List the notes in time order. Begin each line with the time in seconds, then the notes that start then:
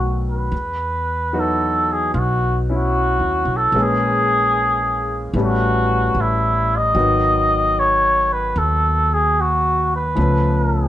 Already playing: B1 D#3 F#3 A3 B3 F#4
0.32 B4
0.52 E2
1.33 E3 F#3 B3 D#4 F#4
1.40 A4
1.92 G#4
2.14 B1 F4
2.19 F#4
2.69 C#4 E4
2.76 F#4
3.20 D#2
3.45 B1
3.57 A4
3.72 A#1 E3 G#3 A#3 C#4 G#4
3.82 G#4
5.34 A1 E3 G3 A3 B3 C#4
5.43 F#4
6.15 A1
6.21 E4
6.77 D#5
6.95 G#1 D#3 F#3 B3 D#4 F#4
7.79 C#5
8.33 B4
8.56 D#2 A4
9.14 G#4
9.41 F#4
9.96 B4
10.15 C#2 F3 A3 B3 C#4
10.20 B4